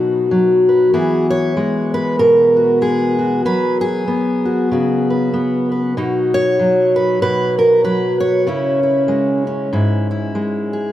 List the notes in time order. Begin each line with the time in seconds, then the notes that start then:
Already playing: B2 F#3 D#4 F#4 B4
0.31 F#3
0.69 B4
0.94 E3 B3 F#4 G#4
1.30 C#5
1.57 G#3
1.94 B4
2.19 B2 A#4
2.57 F#4
2.81 G#3 G#4
3.19 F#4
3.45 F#3 B4
3.81 G#4
4.08 B3
4.45 F#4
4.71 C#3 F#4
5.10 B4
5.34 B3
5.72 B4
5.97 B2 D#4 F#4
6.34 C#5
6.59 F#3
6.96 B4
7.22 B2 B4
7.59 A#4
7.84 F#3 B4
8.20 C#5
8.47 C#3 C#4 E4
8.83 E4
9.08 G#3
9.47 C#4
9.73 G#2 E4
10.11 E4
10.35 G#3
10.73 G#4